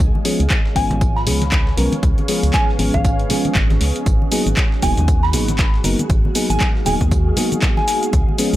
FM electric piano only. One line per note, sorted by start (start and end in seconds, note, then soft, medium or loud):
0.25 0.41 F3 loud
0.25 0.41 G#3 medium
0.25 0.41 B3 medium
0.25 0.41 C#4 medium
0.25 0.41 G#4 loud
0.75 1.24 F3 medium
0.75 1.24 G#3 medium
0.75 1.24 B3 medium
0.75 1.24 C#4 medium
0.75 1.24 F4 medium
1.26 1.42 F3 medium
1.26 1.42 G#3 medium
1.26 1.43 B3 medium
1.26 1.43 C#4 medium
1.26 1.43 G#4 medium
1.77 1.93 F3 medium
1.77 1.93 G#3 medium
1.77 1.93 B3 medium
1.77 1.93 C#4 medium
1.77 1.94 A#4 medium
2.28 2.77 F3 medium
2.28 2.77 G#3 medium
2.28 2.77 B3 medium
2.28 2.77 C#4 medium
2.28 2.77 G#4 medium
2.79 3.02 F3 medium
2.79 3.02 G#3 medium
2.79 3.02 B3 medium
2.79 3.02 C#4 medium
2.79 3.02 G#4 medium
3.29 4.05 F3 medium
3.29 4.05 G#3 medium
3.29 4.05 B3 medium
3.29 4.05 C#4 medium
3.29 4.05 G#4 medium
4.31 4.47 F#3 loud
4.31 4.48 A#3 medium
4.31 4.48 B3 medium
4.31 4.48 D#4 medium
4.31 4.48 G#4 loud
4.82 5.31 F#3 medium
4.82 5.31 A#3 medium
4.82 5.31 B3 medium
4.82 5.31 D#4 medium
4.82 5.31 F#4 medium
5.33 5.49 F#3 medium
5.33 5.49 A#3 medium
5.33 5.49 B3 medium
5.33 5.49 D#4 medium
5.33 5.49 G#4 medium
5.84 6.00 F#3 medium
5.84 6.00 A#3 medium
5.84 6.00 B3 medium
5.84 6.00 D#4 medium
5.84 6.00 A#4 loud
6.35 6.83 F#3 medium
6.35 6.83 A#3 medium
6.35 6.84 B3 medium
6.35 6.84 D#4 medium
6.35 6.84 G#4 medium
6.86 7.09 F#3 medium
6.86 7.09 A#3 medium
6.86 7.09 B3 medium
6.86 7.09 D#4 medium
6.86 7.09 G#4 loud
7.36 8.12 F#3 medium
7.36 8.12 A#3 medium
7.36 8.12 B3 medium
7.36 8.12 D#4 medium
7.36 8.12 G#4 medium
8.38 8.54 F3 loud
8.38 8.54 G#3 medium
8.38 8.54 B3 medium
8.38 8.55 C#4 medium
8.38 8.55 G#4 loud